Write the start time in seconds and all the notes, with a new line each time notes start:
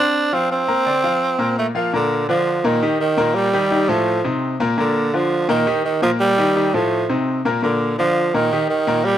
Already playing: C4 C5
0.00 D4 C6
0.32 F3 C4 F4 F5
0.52 C4
0.68 A#3 A#4 A#5
0.86 D3 D4 D5
1.04 F3 F4 F5
1.39 A#2 A#3 A#4
1.59 A3
1.75 F3 A#3 F4 F5
1.93 A#2 D3 A#3 A#4
2.29 D3 F3 D4 F4
2.64 A#2 D#3 A#3 A#4
2.82 D#3 D#4 G4
3.01 D#3
3.17 A#2 A#3 A#4
3.35 G3
3.53 D#3 D#4 G4
3.71 D#3 D#4 G4
3.89 A2 F3 A3 A4
4.24 C3 C4 D#4
4.60 A#2 A#3 A#4
4.78 A#2 D3 A#3 A#4
5.14 D3 F3 D4 F4
5.49 A#2 D#3 A#3 A#4
5.67 D#3 D#4 G4
5.85 D#3
6.02 A#2 F3 A#3 A#4
6.20 G3
6.38 D#3 D#4 G4
6.56 D#3 D#4 G4
6.74 A2 F3 A3 A4
7.09 C3 C4 D#4
7.45 A#2 A#3 A#4
7.63 A#2 D3 A#3 A#4
7.98 D3 F3 D4 F4
8.34 A#2 D#3 A#3 A#4
8.52 D#3 D#4 G4
8.70 D#3
8.87 A#2 A#3 A#4
9.05 G3